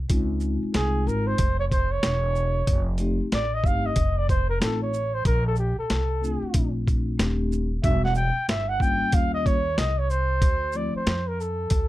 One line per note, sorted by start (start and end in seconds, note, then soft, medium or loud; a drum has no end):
0.09 0.59 C#2 loud
0.09 1.01 G#3 medium
0.09 1.01 C4 medium
0.09 1.01 D#4 medium
0.09 1.02 F4 medium
0.09 kick loud
0.09 closed hi-hat medium
0.40 shaker soft
0.63 muted upright bass stroke soft
0.74 1.05 C2 medium
0.74 1.09 G#4 medium
0.74 snare loud
0.74 closed hi-hat medium
1.05 1.37 G#1 medium
1.05 1.31 G#3 medium
1.05 1.31 C4 medium
1.05 1.31 D#4 medium
1.05 1.31 F4 medium
1.05 1.29 A#4 medium
1.05 shaker soft
1.27 1.59 C5 medium
1.38 2.00 F1 medium
1.38 kick loud
1.38 closed hi-hat medium
1.60 1.65 C#5 loud
1.71 1.93 C5 loud
1.71 kick medium
1.71 closed hi-hat soft
1.71 shaker soft
1.91 2.88 C#5 loud
2.03 2.65 E1 medium
2.03 snare loud
2.03 closed hi-hat medium
2.36 shaker soft
2.67 3.17 F1 loud
2.67 kick medium
2.67 closed hi-hat medium
2.98 3.24 A3 medium
2.98 3.24 C4 medium
2.98 3.25 D#4 medium
2.98 3.25 G4 medium
2.98 closed hi-hat soft
2.98 shaker soft
3.20 muted upright bass stroke soft
3.32 3.65 A1 medium
3.32 3.56 D5 loud
3.32 snare loud
3.32 closed hi-hat medium
3.54 3.67 D#5 medium
3.64 3.95 G1 medium
3.64 3.89 A3 medium
3.64 3.89 C4 medium
3.64 3.89 D#4 medium
3.64 3.90 G4 medium
3.64 3.88 F5 medium
3.64 kick medium
3.64 shaker soft
3.86 4.19 D#5 medium
3.96 4.58 F1 medium
3.96 kick medium
3.96 closed hi-hat medium
4.18 4.29 D5 medium
4.29 4.48 C5 medium
4.29 kick medium
4.29 closed hi-hat soft
4.29 shaker soft
4.49 4.60 A#4 medium
4.60 5.22 A1 medium
4.60 4.86 A3 medium
4.60 4.86 C4 medium
4.60 4.86 D#4 medium
4.60 4.86 F4 medium
4.60 4.80 A4 medium
4.60 snare loud
4.60 closed hi-hat medium
4.82 5.16 C#5 medium
4.94 shaker medium
5.14 5.26 C5 medium
5.25 5.75 A#1 loud
5.25 5.45 A#4 loud
5.25 kick loud
5.25 closed hi-hat medium
5.47 5.57 A4 medium
5.56 5.77 G4 medium
5.56 shaker soft
5.78 6.71 A4 medium
5.78 muted upright bass stroke soft
5.90 6.40 C2 medium
5.90 snare loud
5.90 closed hi-hat medium
6.22 7.14 A3 medium
6.22 7.14 C4 medium
6.22 7.14 D4 medium
6.22 7.15 F4 medium
6.22 shaker soft
6.42 muted upright bass stroke soft
6.54 7.16 A#1 medium
6.54 kick loud
6.54 closed hi-hat loud
6.88 kick medium
6.88 closed hi-hat soft
6.88 shaker soft
7.18 7.80 D#1 medium
7.18 7.67 A3 medium
7.18 7.67 C4 medium
7.18 7.67 D4 medium
7.18 7.67 G4 medium
7.18 snare loud
7.18 closed hi-hat medium
7.52 shaker medium
7.83 8.33 E1 loud
7.83 8.08 G3 medium
7.83 8.08 B3 medium
7.83 8.09 D4 medium
7.83 8.09 F#4 medium
7.83 8.03 E5 loud
7.83 kick loud
7.83 closed hi-hat medium
8.04 8.15 F#5 loud
8.04 snare soft
8.15 8.46 G5 medium
8.15 shaker soft
8.36 muted upright bass stroke soft
8.48 8.98 G1 loud
8.48 8.70 E5 loud
8.48 snare loud
8.48 closed hi-hat medium
8.69 8.83 F#5 loud
8.79 9.05 G3 medium
8.79 9.05 A#3 medium
8.79 9.05 C#4 medium
8.79 9.05 F4 medium
8.79 9.16 G5 loud
8.79 kick medium
8.79 shaker soft
9.01 muted upright bass stroke soft
9.12 9.74 D#2 loud
9.12 9.53 G3 medium
9.12 9.53 A#3 medium
9.12 9.53 C#4 medium
9.12 9.53 F4 medium
9.12 9.34 F5 loud
9.12 kick loud
9.12 closed hi-hat medium
9.34 9.48 D#5 loud
9.46 9.80 C#5 medium
9.46 kick medium
9.46 closed hi-hat soft
9.46 shaker soft
9.78 10.39 C2 medium
9.78 10.00 D#5 medium
9.78 snare loud
9.78 closed hi-hat medium
9.99 10.12 C#5 medium
10.10 10.78 C5 loud
10.10 shaker soft
10.42 10.91 D2 loud
10.42 kick loud
10.42 closed hi-hat medium
10.72 10.99 F3 medium
10.72 10.99 A3 medium
10.72 10.99 C4 medium
10.72 10.99 E4 medium
10.72 shaker soft
10.77 10.95 D5 medium
10.95 11.29 C5 medium
10.95 muted upright bass stroke soft
11.06 11.68 F2 medium
11.06 snare loud
11.06 closed hi-hat medium
11.28 11.42 A#4 medium
11.40 11.88 A4 medium
11.40 shaker soft
11.70 11.88 D2 medium
11.70 kick loud
11.70 closed hi-hat medium